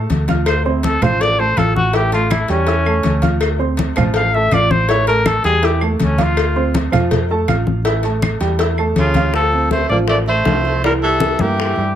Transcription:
Already playing: grand piano A3 A4 A5
0.10 fingered electric bass D2, cowbell, high conga
0.28 grand piano F4 F5 F6, cowbell, high conga
0.46 trumpet C5, cowbell, high conga, claves
0.65 grand piano C4 C5 C6, trumpet E4, high conga
0.83 trumpet A4, cowbell, high conga
1.01 fingered electric bass A1, grand piano F3 F4 F5, trumpet C5, cowbell, low conga, claves
1.21 trumpet D5, cowbell, high conga
1.39 grand piano A3 A4 A5, trumpet C5, high conga
1.57 fingered electric bass A1, grand piano F4 F5 F6, trumpet A4, cowbell, high conga, claves
1.76 trumpet F#4, high conga
1.93 grand piano E3 E4 E5, trumpet G4, cowbell, high conga
2.12 grand piano A3 A4 A5, trumpet F4, cowbell, high conga
2.31 trumpet E4, cowbell, high conga, claves
2.48 fingered electric bass E2, grand piano G3 G4 G5, trumpet C#4, cowbell, high conga
2.67 grand piano E4 E5 E6, cowbell, high conga
2.86 grand piano A3 A4 A5, high conga, claves
3.03 fingered electric bass D2, cowbell, high conga
3.22 grand piano F4 F5 F6, cowbell, high conga
3.41 cowbell, high conga, claves
3.59 grand piano C4 C5 C6, high conga
3.77 cowbell, high conga
3.96 fingered electric bass A1, grand piano F3 F4 F5, cowbell, low conga, claves
4.14 trumpet F5, cowbell, high conga
4.34 grand piano A3 A4 A5, trumpet E5, high conga
4.51 fingered electric bass A1, grand piano F4 F5 F6, trumpet D5, cowbell, high conga, claves
4.71 trumpet C5, high conga
4.89 grand piano E3 E4 E5, trumpet C#5, cowbell, high conga
5.07 grand piano A3 A4 A5, trumpet A#4, cowbell, high conga
5.26 trumpet A4, cowbell, high conga, claves
5.44 fingered electric bass E2, grand piano G3 G4 G5, trumpet G#4, cowbell, high conga
5.63 grand piano E4 E5 E6, trumpet G4, cowbell, high conga
5.81 grand piano A3 A4 A5, trumpet A#3, high conga, claves
6.00 fingered electric bass D2, trumpet C#4, cowbell, high conga
6.18 grand piano F4 F5 F6, cowbell, high conga
6.22 trumpet F4
6.37 cowbell, high conga, claves
6.56 grand piano C4 C5 C6, high conga
6.74 cowbell, high conga
6.92 fingered electric bass F2, grand piano F3 F4 F5, cowbell, low conga, claves
7.11 cowbell, high conga, low conga
7.30 grand piano A3 A4 A5, high conga
7.48 fingered electric bass A1, grand piano F4 F5 F6, cowbell, high conga, claves
7.67 high conga
7.85 grand piano E3 E4 E5, cowbell, high conga
8.03 grand piano A3 A4 A5, cowbell, high conga
8.22 cowbell, high conga, claves
8.40 fingered electric bass E2, grand piano G3 G4 G5, cowbell, high conga
8.59 grand piano E4 E5 E6, cowbell, high conga
8.78 grand piano A3 A4 A5, high conga, claves
8.96 fingered electric bass D2, tenor saxophone C#3, trumpet F4, cowbell, high conga
9.14 grand piano F4 F5 F6, cowbell, high conga
9.34 tenor saxophone F3, trumpet A4, high bongo, high conga
9.53 grand piano C4 C5, high conga
9.71 tenor saxophone A3, trumpet C5, high bongo, high conga
9.89 fingered electric bass A1, grand piano F3 F4, tenor saxophone A#3, trumpet D5, high bongo, high conga
10.08 tenor saxophone A3, trumpet D5, high bongo, high conga
10.26 tenor saxophone A3, grand piano A3 A4, trumpet C5, high bongo, high conga
10.45 fingered electric bass C2, grand piano F3 F4, high bongo, low bongo, high conga
10.65 high bongo
10.84 grand piano E3 E4, tenor saxophone G3, trumpet A#4, high bongo, high conga
11.02 tenor saxophone E3, grand piano G3 G4, trumpet A4, high conga
11.20 high bongo, high conga
11.39 fingered electric bass G2, tenor saxophone E3, grand piano A#3 A#4, trumpet G4, high bongo, high conga
11.58 high bongo, high conga
11.76 fingered electric bass G2, grand piano G3 G4, high conga

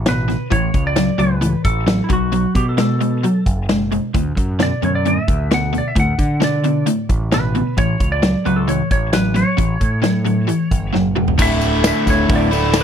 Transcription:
Already playing: picked electric bass A1
0.06 overdriven electric guitar D2 B2, electric slide guitar B4, snare, closed hi-hat
0.28 overdriven electric guitar D2 B2, snare, closed hi-hat
0.50 picked electric bass A1, overdriven electric guitar A2 E3, electric slide guitar C#5, kick, closed hi-hat
0.74 picked electric bass C#2, kick, closed hi-hat
0.87 electric slide guitar D5
0.96 overdriven electric guitar A2 F#3, snare, closed hi-hat
1.18 picked electric bass C#2, overdriven electric guitar A2 F#3, electric slide guitar B4, closed hi-hat
1.41 overdriven electric guitar A2 E3, closed hi-hat
1.65 picked electric bass A1, electric slide guitar A4, kick, closed hi-hat
1.87 overdriven electric guitar A2 F#3, snare, closed hi-hat
2.04 electric slide guitar E4
2.09 picked electric bass B1, overdriven electric guitar B2 F#3, electric slide guitar F#4, kick, closed hi-hat
2.32 overdriven electric guitar B2 F#3, closed hi-hat
2.55 picked electric bass B2, electric slide guitar G4, kick, closed hi-hat
2.69 electric slide guitar A4
2.78 overdriven electric guitar B2 G#3, electric slide guitar A4, snare, closed hi-hat
3.01 overdriven electric guitar B2 G#3, closed hi-hat
3.24 overdriven electric guitar B2 F#3, closed hi-hat
3.46 picked electric bass F#1, kick, closed hi-hat
3.69 overdriven electric guitar B2 G#3, snare, closed hi-hat
3.92 overdriven electric guitar B2 G#3, closed hi-hat
4.14 picked electric bass D2, overdriven electric guitar D2 A2, kick, closed hi-hat
4.37 picked electric bass F#2, kick, closed hi-hat
4.59 overdriven electric guitar D2 B2, electric slide guitar D5, snare, closed hi-hat
4.82 overdriven electric guitar D2 B2, picked electric bass F#2, electric slide guitar C#5, closed hi-hat
4.95 electric slide guitar D5
5.06 overdriven electric guitar D2 A2, electric slide guitar E5, closed hi-hat
5.28 picked electric bass D2, kick, closed hi-hat
5.51 overdriven electric guitar D2 B2, electric slide guitar F#5, snare, closed hi-hat
5.73 overdriven electric guitar D2 B2, closed hi-hat
5.78 electric slide guitar D5
5.88 electric slide guitar E5
5.96 overdriven electric guitar D2 A2, picked electric bass D2, kick, closed hi-hat
6.00 electric slide guitar F#5
6.18 picked electric bass D3, kick, closed hi-hat
6.40 overdriven electric guitar D2 B2, electric slide guitar D5, snare, closed hi-hat
6.64 overdriven electric guitar D2 B2, closed hi-hat
6.86 overdriven electric guitar D2 A2, closed hi-hat
7.09 picked electric bass A1, kick, closed hi-hat
7.32 overdriven electric guitar D2 B2, electric slide guitar B4, snare, closed hi-hat
7.55 overdriven electric guitar D2 B2, closed hi-hat
7.77 picked electric bass A1, overdriven electric guitar A2 E3, electric slide guitar C#5, kick, closed hi-hat
8.00 picked electric bass C#2, kick, closed hi-hat
8.12 electric slide guitar D5
8.22 overdriven electric guitar A2 F#3, snare, closed hi-hat
8.45 picked electric bass C#2, overdriven electric guitar A2 F#3, electric slide guitar B4, closed hi-hat
8.56 electric slide guitar A4
8.68 overdriven electric guitar A2 E3, electric slide guitar C#5, closed hi-hat
8.91 picked electric bass A1, electric slide guitar C#5, kick, closed hi-hat
9.13 overdriven electric guitar A2 F#3, electric slide guitar B4, snare, closed hi-hat
9.34 overdriven electric guitar A2 F#3, electric slide guitar C#5, snare, closed hi-hat
9.57 picked electric bass A1, overdriven electric guitar A2 E3, kick, closed hi-hat
9.80 picked electric bass A2, kick, closed hi-hat
10.02 overdriven electric guitar A2 F#3, snare, closed hi-hat
10.25 overdriven electric guitar A2 F#3, closed hi-hat
10.47 overdriven electric guitar A2 E3, closed hi-hat
10.71 picked electric bass G1, kick, closed hi-hat
10.93 picked electric bass F#1, overdriven electric guitar A2 F#3, snare
11.16 picked electric bass E1, overdriven electric guitar A2 F#3, mid tom
11.28 floor tom
11.38 picked electric bass D1, overdriven electric guitar D2 A2 D3 A3 E4, kick, crash, tambourine
11.42 electric slide guitar E5
11.61 open hi-hat, tambourine
11.84 electric slide guitar E5, snare, open hi-hat, tambourine
12.06 picked electric bass D1, electric slide guitar C#5, kick, snare, open hi-hat, tambourine
12.29 picked electric bass D1, kick, open hi-hat, tambourine
12.36 electric slide guitar D5
12.51 overdriven electric guitar D2 A2 D3 A3 E4, open hi-hat, tambourine
12.62 snare
12.74 overdriven electric guitar D2 A2 D3 A3, snare, open hi-hat, tambourine
12.78 overdriven electric guitar E4

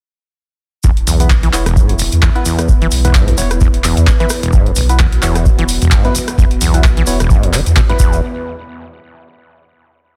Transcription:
0.83 sub bass E1, acid bass E2, analog synth pad B3 E4 B4, kick, cabasa
0.97 closed hi-hat
1.07 sub bass B1, acid bass E2, open hi-hat, cabasa
1.20 synth stab B3 E4 B4, closed hi-hat, cabasa
1.30 acid bass E1, kick, clap, cabasa
1.43 acid bass E3, closed hi-hat
1.53 sub bass E1, synth stab B3 E4 C#5, clap, open hi-hat, cabasa
1.66 acid bass E1, cross-stick, closed hi-hat, cabasa
1.76 acid bass A2, kick, cabasa
1.89 acid bass E2, closed hi-hat
1.99 acid bass E1, open hi-hat, cabasa
2.12 sub bass E2, closed hi-hat, cabasa
2.22 acid bass E2, kick, clap, cabasa
2.35 synth stab B3 E4 B4, closed hi-hat
2.45 acid bass E2, open hi-hat, cabasa
2.59 cross-stick, closed hi-hat, cabasa
2.69 sub bass E1, acid bass E1, kick, cabasa
2.82 acid bass E3, closed hi-hat
2.91 sub bass B1, open hi-hat, cabasa
3.04 acid bass E1, synth stab B3 E4 B4, closed hi-hat, cabasa
3.15 acid bass A2, kick, clap, cabasa
3.28 acid bass E2, closed hi-hat
3.38 sub bass E1, acid bass E1, synth stab B3 E4 C#5, open hi-hat, cabasa
3.51 cross-stick, closed hi-hat, cabasa
3.61 acid bass E2, kick, cabasa
3.74 closed hi-hat
3.84 acid bass E2, clap, open hi-hat, cabasa
3.97 sub bass E2, closed hi-hat, cabasa
4.07 acid bass E1, kick, clap, cabasa
4.20 acid bass E3, synth stab B3 E4 B4, closed hi-hat
4.29 cross-stick, open hi-hat, cabasa
4.43 acid bass E1, closed hi-hat, cabasa
4.53 sub bass E1, acid bass A2, analog synth pad F#4, kick, cabasa
4.66 acid bass E2, closed hi-hat
4.75 acid bass E1, sub bass B1, open hi-hat, cabasa
4.89 synth stab B3 E4 B4, closed hi-hat, cabasa
4.99 acid bass E2, kick, clap, cabasa
5.12 closed hi-hat
5.22 sub bass E1, acid bass E2, synth stab B3 E4 C#5, clap, open hi-hat, cabasa
5.35 cross-stick, closed hi-hat, cabasa
5.46 acid bass E1, kick, cabasa
5.59 acid bass E3, closed hi-hat
5.68 open hi-hat, cabasa
5.82 acid bass E1, sub bass E2, closed hi-hat, cabasa
5.91 acid bass A2, kick, clap, cabasa
6.05 acid bass E2, synth stab B3 E4 B4, closed hi-hat
6.15 acid bass E1, open hi-hat, cabasa
6.28 cross-stick, closed hi-hat, cabasa
6.38 sub bass E1, acid bass E2, kick, cabasa
6.51 closed hi-hat
6.61 sub bass B1, acid bass E2, open hi-hat, cabasa
6.74 synth stab B3 E4 B4, closed hi-hat, cabasa
6.84 acid bass E1, kick, clap, cabasa
6.97 acid bass E3, closed hi-hat
7.06 sub bass E1, synth stab B3 E4 C#5, open hi-hat, cabasa
7.20 acid bass E1, cross-stick, closed hi-hat, cabasa
7.30 acid bass A2, kick, cabasa
7.43 acid bass E2, closed hi-hat
7.53 acid bass E3, clap, open hi-hat, cabasa
7.66 sub bass E2, closed hi-hat, cabasa
7.76 acid bass B2, kick, clap, cabasa
7.89 acid bass G2, synth stab B3 E4 B4, closed hi-hat
7.99 sub bass E1, acid bass E2, synth stab B3 E4 B4, analog synth pad B3 E4 B4, kick, cabasa
8.13 cabasa

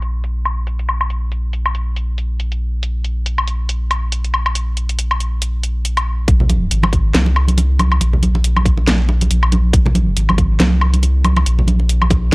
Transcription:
Already playing: sub bass A#1
0.02 closed hi-hat
0.24 closed hi-hat
0.45 closed hi-hat, low woodblock
0.67 closed hi-hat
0.79 closed hi-hat
0.89 low woodblock
1.01 low woodblock
1.10 closed hi-hat
1.32 closed hi-hat
1.53 closed hi-hat
1.66 low woodblock
1.75 closed hi-hat
1.96 closed hi-hat
2.18 closed hi-hat
2.40 closed hi-hat
2.52 closed hi-hat
2.83 closed hi-hat
3.04 closed hi-hat
3.26 closed hi-hat
3.38 low woodblock
3.48 closed hi-hat
3.69 closed hi-hat
3.91 closed hi-hat, low woodblock
4.12 closed hi-hat
4.24 closed hi-hat
4.34 low woodblock
4.46 low woodblock
4.55 closed hi-hat
4.77 closed hi-hat
4.89 closed hi-hat
4.99 closed hi-hat
5.11 low woodblock
5.20 closed hi-hat
5.42 closed hi-hat
5.63 closed hi-hat
5.85 closed hi-hat
5.97 closed hi-hat, low woodblock
6.28 sub bass A#1, kick, closed hi-hat
6.40 low conga
6.49 closed hi-hat, muted conga, high conga
6.71 sub bass G#1, closed hi-hat
6.83 muted conga, high conga, low woodblock
6.93 kick, closed hi-hat
7.14 sub bass C2, snare, closed hi-hat, high conga
7.26 muted conga
7.36 low woodblock
7.48 closed hi-hat, high conga
7.58 closed hi-hat, muted conga
7.79 closed hi-hat, high conga, low woodblock
7.92 low woodblock
8.01 sub bass A#1, closed hi-hat, muted conga
8.13 low conga
8.23 closed hi-hat, high conga
8.35 muted conga
8.44 closed hi-hat
8.56 high conga, low woodblock
8.66 kick, closed hi-hat
8.78 muted conga
8.88 snare, closed hi-hat, high conga
9.09 muted conga
9.21 closed hi-hat, high conga
9.30 sub bass A#1, closed hi-hat
9.43 low woodblock
9.52 closed hi-hat, muted conga, high conga
9.73 sub bass A#1, kick, closed hi-hat
9.86 muted conga, low conga
9.95 closed hi-hat, high conga
10.17 sub bass G#1, closed hi-hat
10.29 muted conga, high conga, low woodblock
10.38 kick, closed hi-hat
10.60 sub bass C2, snare, closed hi-hat, muted conga, high conga
10.81 low woodblock
10.94 closed hi-hat, high conga
11.03 closed hi-hat, muted conga
11.24 closed hi-hat, high conga, low woodblock
11.37 muted conga, low woodblock
11.46 sub bass A#1, closed hi-hat
11.59 low conga
11.68 closed hi-hat, high conga
11.79 muted conga
11.89 closed hi-hat
12.02 high conga, low woodblock
12.10 kick, closed hi-hat, muted conga

